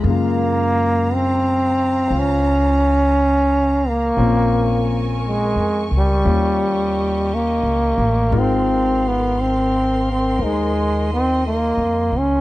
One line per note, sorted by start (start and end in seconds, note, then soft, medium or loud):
0.00 2.06 F#2 medium
0.00 4.15 G#3 soft
0.00 4.15 A#3 soft
0.00 4.13 A#5 medium
0.05 4.19 C#3 soft
0.05 4.13 F5 medium
0.10 1.16 A#3 loud
0.10 2.10 F4 medium
1.14 2.21 C4 medium
2.08 4.13 C#2 medium
2.08 4.17 F4 soft
2.08 4.16 C5 soft
2.19 3.90 C#4 loud
3.89 5.06 A#3 medium
4.17 5.51 A#1 medium
4.17 6.23 A#3 medium
4.17 6.25 C4 medium
4.17 6.24 C#4 soft
4.17 6.24 F4 medium
4.17 6.22 A#4 medium
4.17 6.22 G#5 medium
4.17 8.29 C#6 medium
5.27 5.89 G#3 medium
5.56 5.88 F2 medium
5.91 6.23 C#2 medium
5.97 7.36 G3 medium
6.23 7.59 D#2 medium
6.23 8.32 G3 soft
6.23 8.32 A#3 soft
6.23 8.33 C#4 soft
6.23 8.32 F4 soft
6.23 8.30 G4 medium
6.23 8.30 D#5 medium
7.35 8.41 A#3 medium
7.63 7.95 C#2 medium
7.98 8.30 A1 medium
8.31 10.36 G#1 medium
8.31 12.41 G#3 soft
8.31 10.41 D#4 medium
8.31 12.41 F4 medium
8.31 12.41 A#4 medium
8.31 10.37 F5 medium
8.31 12.41 C6 medium
8.39 9.09 C4 medium
9.08 9.42 B3 medium
9.41 10.08 C4 medium
10.12 10.45 C4 medium
10.39 11.73 D#2 medium
10.39 12.41 D#4 soft
10.39 12.41 C5 soft
10.39 12.41 D#5 medium
10.44 11.11 G#3 medium
11.14 11.43 C4 medium
11.47 12.20 A#3 medium
11.77 12.09 F2 medium
12.12 12.41 C#2 medium
12.19 12.41 C#4 medium